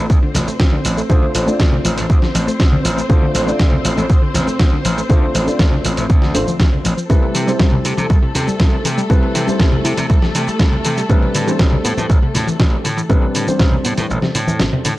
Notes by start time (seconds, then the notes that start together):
Already playing: A3 C4 D4 F4 C5 D5
0.10 D2 C3, kick, shaker
0.23 D3
0.35 A1 F3, snare, open hi-hat, low conga, shaker
0.48 A3, muted slap bass stroke, shaker
0.60 D2 C3, kick, snare, shaker
0.72 D3
0.85 A1 F3, open hi-hat, shaker
0.97 A3, shaker
1.09 D2 C3 A3 D4 F4 C5, kick, shaker
1.22 D3
1.35 A1 F3, open hi-hat, shaker
1.46 A3 D4 F4 D5, muted slap bass stroke, shaker
1.60 D2 C3, kick, snare, shaker
1.72 D3, low conga
1.85 A1 F3, open hi-hat, shaker
1.97 A1 A3, open hi-hat, high conga, shaker
2.10 D2 C3, kick, shaker
2.22 D3, snare, high conga
2.35 A1 F3, open hi-hat, shaker
2.47 A3, muted slap bass stroke, shaker
2.60 D2 C3, kick, snare, shaker
2.72 D3, low conga
2.85 A1 F3, open hi-hat, shaker
2.97 A3, shaker
3.09 D2 C3 A3 D4 F4 C5, kick, shaker
3.22 D3
3.35 A1 F3, open hi-hat, shaker
3.46 A3 D4 F4 D5, shaker
3.59 D2 C3, kick, snare, shaker
3.72 D3, low conga
3.85 A1 F3, open hi-hat, shaker
3.97 A1 A3, high conga, shaker
4.10 D2 C3, kick, shaker
4.22 D3
4.34 A1 F3, snare, open hi-hat, low conga, shaker
4.47 A3, muted slap bass stroke, shaker
4.59 D2 C3, kick, snare, shaker
4.72 D3
4.85 A1 F3, open hi-hat, shaker
4.97 A3, shaker
5.09 D2 C3 A3 D4 F4 C5, kick, shaker
5.22 D3
5.35 A1 F3, open hi-hat, shaker
5.46 A3 D4 F4 D5, muted slap bass stroke, shaker
5.59 D2 C3, kick, snare, shaker
5.72 D3, low conga
5.85 A1 F3, open hi-hat, shaker
5.97 A1 A3, open hi-hat, high conga, shaker
6.09 D2 C3, kick, shaker
6.22 D3, snare, high conga
6.34 A1 A3 D4 F4 C5, open hi-hat, shaker
6.47 D3, high conga, shaker
6.59 D2 F3, kick, snare, shaker
6.72 D3, low conga
6.85 A1 F3, open hi-hat, shaker
6.97 F3, shaker
7.09 C2 B2 G3 A3 C4 E4 A4 B4, kick, shaker
7.23 C3
7.34 C3 E3, open hi-hat, shaker
7.46 G3 C4 E4 C5, shaker
7.59 C2 B2, kick, snare, shaker
7.72 C3, low conga
7.85 C3 E4, open hi-hat, shaker
7.97 C3 G3, high conga, shaker
8.10 C2 B2, kick, shaker
8.22 C3
8.35 C3 E3, snare, open hi-hat, low conga, shaker
8.47 G3, muted slap bass stroke, shaker
8.60 C2 B2, kick, snare, shaker
8.72 C3
8.85 C3 E3, open hi-hat, shaker
8.98 G3, shaker
9.10 C2 B2 G3 C4 E4 B4, kick, shaker
9.23 C3
9.35 C3 E3, open hi-hat, shaker
9.47 G3 C4 E4 C5, muted slap bass stroke, shaker
9.60 C2, kick, snare, shaker
9.72 C3, low conga
9.85 C3 E4, open hi-hat, shaker
9.97 C3 G3, open hi-hat, high conga, shaker
10.10 C2 B2, kick, shaker
10.22 C3, snare, high conga
10.35 C3 E3, open hi-hat, shaker
10.48 G3, muted slap bass stroke, shaker
10.59 C2 B2, kick, snare, shaker
10.72 C3, low conga
10.85 C3 E3, open hi-hat, shaker
10.97 G3, shaker
11.09 A1 B2 G3 C4 D4 B4, kick, shaker
11.22 C3
11.35 A2 D3, open hi-hat, shaker
11.46 E3 G3 C4 D4 C5, shaker
11.59 A1 B2, kick, snare, shaker
11.72 C3, low conga
11.85 A2 B3, open hi-hat, shaker
11.97 A2 E3, high conga, shaker
12.10 A1 B2, kick, shaker
12.22 C3
12.35 A2 D3, snare, open hi-hat, low conga, shaker
12.47 E3, muted slap bass stroke, shaker
12.60 A1 B2, kick, snare, shaker
12.72 C3
12.84 A2 D3, open hi-hat, shaker
12.97 E3, shaker
13.09 A1 B2 G3 C4 D4 B4, kick, shaker
13.22 C3
13.35 A2 D3, open hi-hat, shaker
13.46 E3 G3 C4 D4 C5, muted slap bass stroke, shaker
13.59 A1 B2, kick, snare, shaker
13.72 C3, low conga
13.85 A2 B3, open hi-hat, shaker
13.97 A2 E3, open hi-hat, high conga, shaker
14.10 A1 B2, shaker
14.22 C3, snare, high conga
14.35 A2 D3, open hi-hat, shaker
14.47 E3, high conga, shaker
14.60 A1 B2, snare, shaker
14.72 C3, low conga
14.85 A2 D3, open hi-hat, shaker